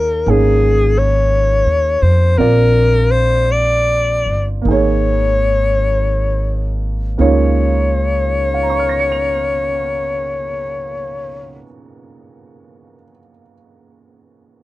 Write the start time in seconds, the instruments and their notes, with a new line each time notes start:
Already playing: upright bass D#2, upright piano A#3 D#4 G#4 C#5, alto saxophone A#4
0.26 upright bass G#1, upright piano A#3 C#4 D#4 G#4
0.30 alto saxophone G#4
0.99 alto saxophone C#5
1.66 upright bass D#2
2.02 upright bass F2, alto saxophone C5
2.38 upright bass A#1, upright piano C4 F4 A#4 D5, alto saxophone A#4
3.11 alto saxophone C5
3.51 alto saxophone D5
4.26 upright bass G1
4.62 upright bass G#1, upright piano A#3 D#4
4.68 upright piano G#4 C#5, alto saxophone C#5
7.18 upright bass C#2, upright piano C#3 A#3 D#4 F4 C#5, alto saxophone C#5
8.54 upright piano F5
8.62 upright piano A#5
8.70 upright piano C#6
8.79 upright piano F6
8.89 upright piano A#6
8.99 upright piano C#7
9.12 upright piano F7